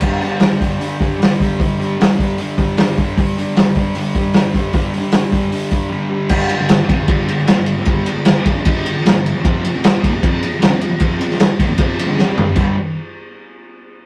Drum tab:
CC |x---------------|----------------|----------------|----------------|
RD |----------------|----------------|----------------|----------------|
HH |--o-o-o-o-o-o-o-|o-o-o-o-o-o-o-o-|o-o-o-o-o-o-o-o-|o-o-o-o-o-o-----|
SD |----o-------o---|----o-------o---|----o-------o---|----o-----------|
FT |----------------|----------------|----------------|----------------|
BD |o-----o---o---o-|o-----o---o---o-|o-----o---o---o-|o-----o---o-----|

CC |x---------------|----------------|----------------|----------------|
RD |--x-x-x-x-x-x-x-|x-x-x-x-x-x-x-x-|x-x-x-x-x-x-x-x-|x-x-x-x-x-x-----|
HH |----------------|----------------|----------------|----------------|
SD |----o-------o---|----o-------o---|----o-------o---|---oo-------o---|
FT |----------------|----------------|----------------|--------------o-|
BD |o-----o-o-------|o-----o-o-------|o-----o-o-------|o-----o-o-------|

CC |x---------------|
RD |----------------|
HH |----------------|
SD |----------------|
FT |----------------|
BD |o---------------|